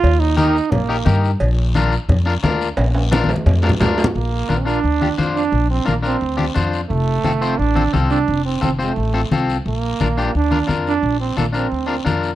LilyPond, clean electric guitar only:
\new Staff \with { instrumentName = "Clean electric guitar" } { \time 4/4 \key bes \major \tempo 4 = 174 r4 <ees' g' bes'>8 r4 <ees' g' bes'>8 <ees' g' bes'>8 r8 | r4 <d' f' bes'>8 r4 <d' f' bes'>8 <d' f' bes'>8 r8 | r4 <d' f' bes'>8 r4 <d' f' bes'>8 <d' f' bes'>8 r8 | r4 <d' f' bes'>8 <d' f' bes'>8 r8 <d' f' g'>8 <d' f' c''>8 r8 |
r4 <d' f' bes'>8 <d' f' bes'>8 r8 <d' f' g'>8 <d' f' c''>8 r8 | r4 <c' f' a'>8 <c' f' c''>8 r8 <c' f' a'>8 <c' f' a'>8 r8 | r4 <c' f' a'>8 <c' f' c''>8 r8 <c' f' a'>8 <c' f' a'>8 r8 | r4 <d' f' bes'>8 <d' f' g'>8 r8 <d' f' bes'>8 <d' f' bes'>8 r8 |
r4 <d' f' a'>8 <d' f' bes'>8 r8 <d' f' bes'>8 <d' f' bes'>8 r8 | }